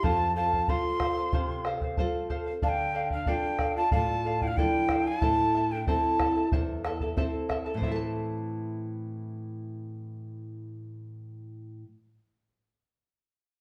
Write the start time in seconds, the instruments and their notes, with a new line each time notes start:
0.03 nylon-string guitar F2, pan flute F4, charango A4 C5 F5, quena A5, bombo low
0.36 pan flute F4, charango A4 C5 F5, quena A5
0.53 charango C5 F5, bombo low
0.68 nylon-string guitar C4 F4 A4, pan flute F4, charango A4 C5 F5, quena C6, bombo low
1.00 charango A4 C5 F5, bombo rim, bombo low
1.17 charango C5 F5
1.32 nylon-string guitar C3, charango A4 C5 F5, bombo low
1.65 charango A4 C5 F5, bombo rim
1.81 charango C5 F5, bombo low
1.97 nylon-string guitar C4 F4 A4, charango A4 C5 F5, bombo low
2.30 charango A4 C5 F5, bombo low
2.46 charango C5 F5
2.62 nylon-string guitar D3, pan flute D4, charango A4 D5 F5, quena A5, bombo low
2.69 quena G5
2.94 charango A4 D5 F5
3.10 pan flute D4, charango D5 F5, quena F5, bombo low
3.26 pan flute D4, nylon-string guitar D4 F4 A4, charango A4 D5 F5, quena G5, bombo low
3.59 charango A4 D5 F5, bombo rim, bombo low
3.76 pan flute F4, charango D5 F5, quena A5
3.91 nylon-string guitar A2, pan flute F4, charango A4 D5 F5, quena A5, bombo low
4.25 charango A4 D5 F5
4.41 pan flute E4, charango D5 F5, quena G5, bombo low
4.48 pan flute D4, quena F5
4.57 nylon-string guitar F3 D4 A4, pan flute E4, charango A4 D5, quena G5, bombo low
4.89 charango A4 D5 F5, bombo rim, bombo low
5.06 pan flute E4, charango D5 F5, quena G#5
5.21 nylon-string guitar A2, charango E4 A4 C5 E5 A5, quena A5, bombo low
5.55 charango E4 A4 E5 A5
5.71 pan flute D4, charango E4 A4 A5, quena G5
5.87 nylon-string guitar C4 E4 A4, charango E4 A4 C5 E5 A5, pan flute E4, quena A5, bombo low
6.20 charango E4 A4 E5 A5, bombo rim, bombo low
6.36 charango E4 A4 A5
6.52 nylon-string guitar E2, charango E4 A4 C5 E5 A5, bombo low
6.84 charango E4 A4 E5 A5, bombo rim
7.00 charango E4 A4 A5, bombo low
7.17 nylon-string guitar C4 E4 A4, charango E4 A4 C5 E5 A5, bombo low
7.49 charango E4 A4 E5 A5, bombo rim, bombo low
7.66 charango E4 A4 A5
7.74 nylon-string guitar A2 E3, charango C5
7.81 nylon-string guitar C4 A4, charango E5, bombo low
7.88 charango E4, nylon-string guitar E5 A5
7.92 charango A4 A5